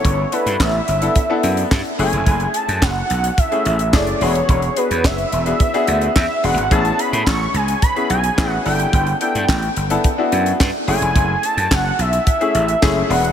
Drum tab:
HH |x-xx--xxx-xx-xox|xxxx--xxxxxx-xox|xxxx-xxxxxxx--ox|xxxx--xxxxxx--ox|
CP |----x-------x---|----x-------x---|----x-------x---|----x-------x---|
SD |----o-------o---|----o-------o---|----o-------o---|----o-------o---|
BD |o---o---o---o---|o---o---o---o---|o---o---o---o---|o---o---o---o---|

HH |xxxx-xxxx-xx--ox|x-xx--xxxxxx--ox|
CP |----x-------x---|----x-------x---|
SD |----o-------o---|----o-------o---|
BD |o---o---o---o---|o---o---o---o---|